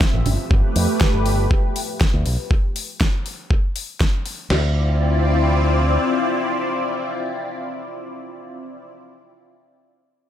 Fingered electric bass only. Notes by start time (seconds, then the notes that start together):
0.14 A1
0.26 G1
0.51 G1
0.76 F2
1.14 G1
2.14 D2
2.26 B1
4.50 D2